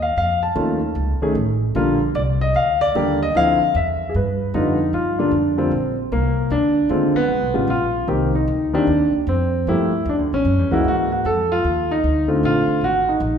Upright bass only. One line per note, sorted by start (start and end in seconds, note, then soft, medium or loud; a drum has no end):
0.00 0.16 D#2 medium
0.17 0.55 F2 medium
0.56 0.94 D#2 medium
0.95 1.19 C#2 medium
1.21 muted upright bass stroke soft
1.35 1.74 A1 medium
1.75 2.14 A#1 medium
2.15 2.53 C2 medium
2.54 2.93 D2 medium
2.95 3.33 D#2 medium
3.35 3.58 D2 medium
3.60 muted upright bass stroke soft
3.75 4.13 E2 medium
4.14 4.52 G2 medium
4.54 4.92 F2 medium
4.93 5.31 G2 medium
5.31 5.70 F2 medium
5.71 6.10 A#1 medium
6.12 6.50 C2 medium
6.50 6.89 D2 medium
6.89 7.13 D#2 medium
7.15 muted upright bass stroke soft
7.29 7.42 C#2 medium
7.42 7.54 B1 medium
7.55 7.67 G#1 medium
7.68 8.07 A#1 medium
8.08 8.47 C2 medium
8.48 8.86 D2 medium
8.87 9.11 D#2 medium
9.13 muted upright bass stroke soft
9.27 9.65 F2 medium
9.67 10.05 G2 medium
10.06 10.19 E2 medium
10.19 10.32 D2 soft
10.33 10.44 A#1 medium
10.45 10.59 F#2 medium
10.59 10.71 E2 soft
10.71 10.84 C#2 medium
10.84 11.23 G#2 medium
11.25 11.63 F2 medium
11.64 12.02 D#2 medium
12.04 12.42 D2 medium
12.43 12.66 A#1 medium
12.67 muted upright bass stroke soft
12.81 13.20 G#1 medium
13.20 13.38 A#1 medium